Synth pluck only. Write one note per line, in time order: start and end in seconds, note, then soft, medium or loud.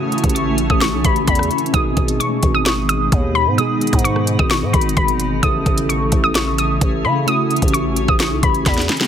0.00 0.33 D#6 loud
0.35 0.68 C#6 medium
0.70 0.79 D#6 medium
0.81 1.00 C#6 medium
1.05 1.23 B5 medium
1.28 1.71 B5 medium
1.74 2.17 D#6 loud
2.20 2.53 C#6 medium
2.55 2.64 D#6 medium
2.66 2.85 C#6 medium
2.89 3.32 D#6 medium
3.35 3.54 B5 medium
3.58 4.02 D#6 loud
4.04 4.37 C#6 medium
4.39 4.48 D#6 medium
4.51 4.69 C#6 medium
4.73 4.92 B5 medium
4.97 5.40 B5 medium
5.43 5.86 D#6 loud
5.89 6.22 C#6 medium
6.24 6.33 D#6 medium
6.35 6.54 C#6 medium
6.58 7.02 D#6 medium
7.05 7.23 B5 medium
7.28 7.71 D#6 loud
7.74 8.06 C#6 medium
8.09 8.18 D#6 medium
8.20 8.38 C#6 medium
8.43 8.62 B5 medium
8.66 9.07 B5 medium